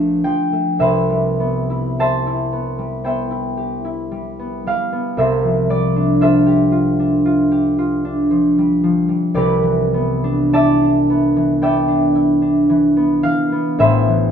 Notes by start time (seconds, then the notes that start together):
Already playing: A#1 A#2 F3 A3 D4 F4 A4 A#4 D5
0.24 F3 G5
0.53 A3
0.79 C2 C3 B4 C5 E5
1.10 G3
1.40 B3
1.70 E4
1.99 G4 C5 E5 A5
2.27 E4
2.53 B3
2.79 G3
3.04 B3 C5 E5 G5
3.31 E4
3.57 G4
3.85 E4
4.11 G3
4.39 B3
4.66 G3 F5
4.93 B3
5.17 C2 C3 A4 C5 E5
5.44 F3
5.69 G3 D5
5.96 D4
6.21 F4 A4 C5 E5
6.46 G4
6.72 F4
6.99 D4
7.25 F4
7.52 G4
7.78 F4
8.05 D4
8.30 F3
8.58 G3
8.83 F3
9.09 G3
9.34 C2 C3 G4 B4 D5
9.63 E3
9.94 B3
10.24 D4
10.53 E4 D5 E5 A5
10.82 D4
11.10 B3
11.36 E3
11.62 B3 D5 E5 G5
11.88 D4
12.15 E4
12.42 D4
12.69 E3
12.97 B3
13.23 E3 F5
13.52 B3
13.78 A1 A2 B4 C5 E5
14.08 E3